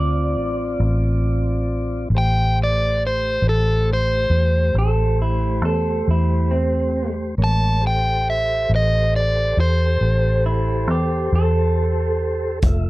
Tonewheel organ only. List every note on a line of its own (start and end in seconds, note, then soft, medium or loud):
0.00 2.08 C4 medium
0.00 2.09 F4 medium
0.00 2.08 D5 medium
2.14 7.35 A3 medium
2.14 7.35 G4 medium
2.14 7.35 C5 medium
7.38 7.82 G#3 medium
7.38 7.82 A#4 medium
7.38 7.82 C#5 medium
7.81 12.60 G4 medium
7.81 12.59 A4 medium
7.81 12.59 C5 medium
12.65 12.90 A3 medium
12.65 12.90 F4 medium
12.65 12.90 E5 medium